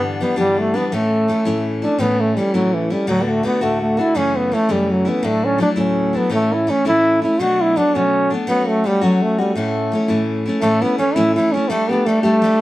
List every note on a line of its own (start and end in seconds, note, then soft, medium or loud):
0.00 0.21 G2 medium
0.00 0.21 D3 medium
0.00 0.20 E3 medium
0.00 0.21 G3 medium
0.00 0.21 B3 medium
0.00 0.22 D4 medium
0.20 0.36 E3 medium
0.20 0.36 G3 medium
0.20 0.37 B3 medium
0.20 0.36 B3 medium
0.20 0.35 D4 medium
0.36 0.75 G2 soft
0.36 0.75 D3 soft
0.36 0.77 E3 medium
0.36 0.75 G3 medium
0.36 0.61 G3 medium
0.36 0.74 B3 medium
0.36 0.73 D4 medium
0.59 0.78 A3 medium
0.74 0.91 E3 soft
0.74 0.93 G3 soft
0.74 0.92 B3 medium
0.74 0.88 B3 medium
0.74 0.92 D4 medium
0.88 0.95 B3 medium
0.92 1.29 A2 medium
0.92 1.27 E3 medium
0.92 1.29 A3 medium
0.92 1.66 A3 medium
0.92 1.29 C#4 medium
0.92 1.30 E4 medium
1.28 1.46 E3 medium
1.28 1.46 A3 medium
1.28 1.45 C#4 medium
1.28 1.44 E4 medium
1.45 1.84 A2 medium
1.45 1.83 E3 medium
1.45 1.85 A3 medium
1.45 1.83 C#4 medium
1.45 1.81 E4 medium
1.82 1.99 A3 soft
1.82 1.99 C#4 medium
1.82 2.02 D4 medium
1.82 1.99 E4 medium
1.98 2.36 A2 medium
1.98 2.35 E3 medium
1.98 2.37 A3 medium
1.98 2.22 B3 medium
1.98 2.37 C#4 medium
1.98 2.37 E4 medium
2.21 2.39 A3 medium
2.37 2.54 E3 medium
2.37 2.55 G3 medium
2.37 2.54 A3 medium
2.37 2.53 C#4 medium
2.37 2.53 E4 medium
2.54 2.92 A2 soft
2.54 2.92 E3 soft
2.54 2.75 F#3 medium
2.54 2.93 A3 medium
2.54 2.90 C#4 medium
2.54 2.89 E4 medium
2.74 2.94 E3 medium
2.90 3.08 G3 medium
2.90 3.07 A3 soft
2.90 3.08 C#4 soft
2.90 3.07 E4 medium
3.07 3.44 D2 medium
3.07 3.44 A2 medium
3.07 3.42 D3 medium
3.07 3.24 F#3 medium
3.07 3.44 A3 medium
3.07 3.44 D4 medium
3.07 3.46 F#4 medium
3.23 3.30 B3 medium
3.29 3.47 A3 medium
3.43 3.61 D3 medium
3.43 3.61 A3 medium
3.43 3.64 B3 medium
3.43 3.61 D4 medium
3.43 3.60 F#4 medium
3.61 3.99 D2 medium
3.61 3.99 A2 medium
3.61 3.99 D3 medium
3.61 3.82 A3 medium
3.61 3.99 A3 medium
3.61 3.97 D4 medium
3.61 3.97 F#4 medium
3.82 4.01 A3 medium
3.97 4.15 D3 soft
3.97 4.15 A3 soft
3.97 4.16 D4 medium
3.97 4.19 E4 loud
3.97 4.15 F#4 medium
4.15 4.52 F#2 medium
4.15 4.52 C#3 medium
4.15 4.51 E3 medium
4.15 4.53 A3 medium
4.15 4.53 C#4 medium
4.15 4.39 C#4 loud
4.15 4.54 E4 medium
4.37 4.55 B3 medium
4.52 4.68 E3 medium
4.52 4.68 A3 soft
4.52 4.73 A3 loud
4.52 4.68 C#4 medium
4.52 4.67 E4 medium
4.69 5.07 F#2 soft
4.69 5.07 C#3 medium
4.69 5.08 E3 medium
4.69 4.93 G3 medium
4.69 5.07 A3 medium
4.69 5.05 C#4 medium
4.69 5.05 E4 medium
4.91 5.10 F#3 medium
5.05 5.23 E3 soft
5.05 5.23 A3 soft
5.05 5.27 B3 medium
5.05 5.23 C#4 soft
5.05 5.23 E4 medium
5.23 5.60 D2 medium
5.23 5.60 A2 medium
5.23 5.57 F#3 medium
5.23 5.60 A3 medium
5.23 5.46 A3 medium
5.23 5.60 D4 medium
5.23 5.61 E4 medium
5.45 5.61 C#4 medium
5.58 5.76 F#3 medium
5.58 5.76 A3 medium
5.58 5.78 D4 medium
5.58 5.69 D4 medium
5.58 5.75 E4 medium
5.76 6.15 D2 medium
5.76 6.15 A2 medium
5.76 6.14 F#3 medium
5.76 6.15 A3 medium
5.76 6.18 C#4 medium
5.76 6.12 E4 medium
6.13 6.30 F#3 soft
6.13 6.30 A3 soft
6.13 6.32 B3 medium
6.13 6.31 D4 soft
6.13 6.31 E4 soft
6.29 6.67 A2 medium
6.29 6.66 E3 medium
6.29 6.68 A3 medium
6.29 6.55 A3 loud
6.29 6.68 C#4 medium
6.29 6.69 E4 medium
6.53 6.71 E4 medium
6.67 6.85 E3 medium
6.67 6.85 A3 medium
6.67 6.85 C#4 medium
6.67 6.86 C#4 medium
6.67 6.84 E4 medium
6.85 7.23 A2 soft
6.85 7.23 E3 soft
6.85 7.25 A3 medium
6.85 7.22 C#4 medium
6.85 7.20 E4 medium
6.85 7.21 E4 loud
7.22 7.40 A3 soft
7.22 7.40 C#4 soft
7.22 7.39 E4 medium
7.22 7.42 E4 medium
7.39 7.76 B2 medium
7.39 7.75 F#3 medium
7.39 7.78 A3 medium
7.39 7.76 B3 medium
7.39 7.77 D4 medium
7.39 7.63 F#4 loud
7.61 7.79 E4 loud
7.76 7.93 F#3 medium
7.76 7.94 A3 medium
7.76 7.94 B3 medium
7.76 7.97 D4 loud
7.76 7.95 D4 medium
7.95 8.32 B2 soft
7.95 8.31 F#3 medium
7.95 8.32 A3 medium
7.95 8.31 B3 medium
7.95 8.32 C#4 loud
8.30 8.47 A3 medium
8.30 8.47 B3 soft
8.30 8.47 D4 medium
8.47 8.83 F#3 medium
8.47 8.85 A3 medium
8.47 8.70 B3 loud
8.47 8.86 C#4 medium
8.47 8.85 F#4 medium
8.68 8.88 A3 medium
8.84 9.01 F#3 soft
8.84 9.05 G3 medium
8.84 9.02 A3 medium
8.84 9.01 C#4 medium
8.84 9.00 F#4 medium
9.01 9.39 F#3 medium
9.01 9.24 F#3 medium
9.01 9.41 A3 medium
9.01 9.39 C#4 medium
9.01 9.37 F#4 medium
9.22 9.41 A3 medium
9.38 9.55 G3 medium
9.38 9.56 A3 soft
9.38 9.56 C#4 soft
9.38 9.55 F#4 medium
9.55 9.92 A2 medium
9.55 9.90 E3 medium
9.55 10.25 A3 medium
9.55 9.93 A3 medium
9.55 9.93 C#4 medium
9.55 9.93 E4 medium
9.92 10.09 E3 soft
9.92 10.08 A3 medium
9.92 10.08 C#4 medium
9.92 10.07 E4 medium
10.08 10.46 A2 medium
10.08 10.46 E3 medium
10.08 10.49 A3 medium
10.08 10.46 C#4 medium
10.08 10.44 E4 medium
10.46 10.62 A3 soft
10.46 10.62 C#4 medium
10.46 10.63 E4 medium
10.61 10.82 A2 medium
10.61 10.82 E3 medium
10.61 10.83 A3 loud
10.61 10.82 A3 medium
10.61 10.82 C#4 medium
10.61 10.80 E4 medium
10.82 10.98 A3 soft
10.82 10.98 B3 medium
10.82 10.99 C#4 medium
10.82 10.99 E4 medium
10.98 11.16 E3 medium
10.98 11.16 A3 medium
10.98 11.16 C#4 medium
10.98 11.15 C#4 medium
10.98 11.15 E4 medium
11.15 11.37 A2 medium
11.15 11.35 E3 medium
11.15 11.36 A3 medium
11.15 11.36 C#4 medium
11.15 11.34 E4 loud
11.15 11.36 E4 medium
11.35 11.53 E3 medium
11.35 11.54 A3 medium
11.35 11.54 C#4 medium
11.35 11.54 E4 medium
11.39 11.53 E4 medium
11.52 11.70 C#4 medium
11.52 11.71 C#4 medium
11.52 11.70 E4 medium
11.57 11.69 A3 medium
11.69 11.89 G3 medium
11.69 11.92 A3 loud
11.69 11.90 A3 medium
11.69 11.90 D4 medium
11.69 11.88 G4 medium
11.89 12.07 A3 medium
11.89 12.08 B3 medium
11.89 12.07 D4 soft
11.89 12.06 G4 medium
12.06 12.23 G3 medium
12.06 12.23 A3 loud
12.06 12.24 A3 medium
12.06 12.23 D4 medium
12.06 12.22 G4 medium
12.23 12.41 G3 medium
12.23 12.61 A3 loud
12.23 12.42 A3 medium
12.23 12.43 D4 medium
12.23 12.43 G4 medium
12.42 12.59 G3 medium
12.42 12.60 A3 medium
12.42 12.60 D4 medium
12.42 12.59 G4 medium